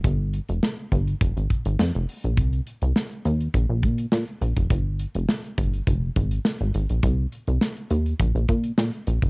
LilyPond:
<<
  \new Staff \with { instrumentName = "Analog synth bass" } { \clef bass \time 4/4 \key c \minor \tempo 4 = 103 g,,8. f,,16 r8 g,,8 f,,16 aes,,16 r16 aes,,16 f,16 f,,16 r16 bes,,16 | c,8 r16 c,16 r8 ees,8 bes,,16 bes,,16 bes,8 bes,16 r16 bes,,16 f,,16 | g,,8. f,,16 r8 g,,8 f,,8 aes,,8 r16 aes,,16 aes,,16 bes,,16 | c,8 r16 c,16 r8 ees,8 bes,,16 bes,,16 bes,8 bes,16 r16 bes,,16 f,,16 | }
  \new DrumStaff \with { instrumentName = "Drums" } \drummode { \time 4/4 <hh bd>8 hh16 hh16 sn8 <hh bd>16 hh16 <hh bd>16 hh16 <hh bd>16 hh16 sn16 hh16 hho16 hh16 | <hh bd>16 hh16 hh16 hh16 sn16 hh16 hh16 hh16 <hh bd>8 <hh bd>16 hh16 sn16 hh16 hh16 <hh bd>16 | <hh bd>8 hh16 hh16 sn16 hh16 <hh bd>16 hh16 <hh bd>8 <hh bd>16 hh16 sn16 hh16 hh16 hh16 | <hh bd>8 hh16 hh16 sn16 hh16 hh16 hh16 <hh bd>16 hh16 <hh bd>16 hh16 sn16 hh16 hh16 <hh bd>16 | }
>>